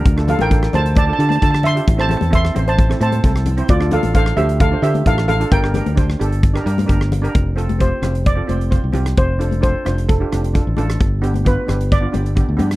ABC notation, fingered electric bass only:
X:1
M:4/4
L:1/16
Q:1/4=132
K:Dm
V:1 name="Fingered electric bass" clef=bass
D,,3 A,,,3 D,,4 D,2 D,4 | A,,,3 E,,3 A,,,4 A,,2 C,,4 | D,,3 A,,,3 D,,4 D,2 A,,,4 | G,,,3 D,,3 G,,,4 G,,2 G,,,4 |
F,,,6 F,,,4 F,,,3 C,, C,,2 | F,,,6 F,,,4 F,,,3 A,,, A,,,2 | G,,,6 G,,,4 G,,,3 D,, G,,2 |]